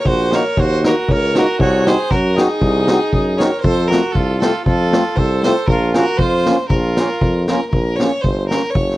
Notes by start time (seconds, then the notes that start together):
0.00 A#4
0.05 A#1 F#4 C5, kick
0.32 A#3 D#4 F#4 A#4 C#5, snare, hi-hat pedal
0.57 D#2 F#4 C5, kick
0.84 A#3 D#4 F#4 A#4, snare, hi-hat pedal
1.08 C#2 A#4 C#5, kick
1.35 A#3 D#4 F#4 A#4, snare, hi-hat pedal
1.59 C2 F#4 C#5, kick
1.86 C4 D#4 F#4 G#4 C5, snare, hi-hat pedal
2.10 F#2 F#4 A#4, kick, snare
2.35 C4 D#4 F#4 G#4, snare, hi-hat pedal
2.61 C2, kick
2.88 C4 D#4 F#4, snare, hi-hat pedal
3.12 F#2, kick
3.38 C4 D#4 F#4 A#4 C#5, snare, hi-hat pedal
3.60 C5
3.64 F2 A4, kick
3.87 A3 C4 F4 F#4 A#4
3.91 snare, hi-hat pedal
4.12 C2 F4 A4, kick
4.38 A3 C4 F4 A4, snare, hi-hat pedal
4.42 F4
4.65 F2 F4 A4, kick
4.92 A3 C4 F4, snare, hi-hat pedal
5.16 C2 A4 C5, kick
5.43 A3 C4 F4 A4 C5, snare, hi-hat pedal
5.67 A#1 F4 A#4, kick
5.94 A#3 C#4 F4 F#4 A#4, snare, hi-hat pedal
6.18 F2 C5, kick
6.22 F4
6.45 A#3 C#4 F4, snare, hi-hat pedal
6.68 A#1 A#4, kick
6.73 F4
6.97 A#3 C#4 F4, snare, hi-hat pedal
7.21 F2, kick
7.47 A#3 C#4 F4 A#4, snare, hi-hat pedal
7.69 A#1 A#4, kick
7.96 C#5, snare
8.00 A#3 C#4 F4
8.21 G1 C5, kick
8.47 A#3 C#4 F4 A#4, snare
8.70 C#5
8.75 F#1, kick
8.90 snare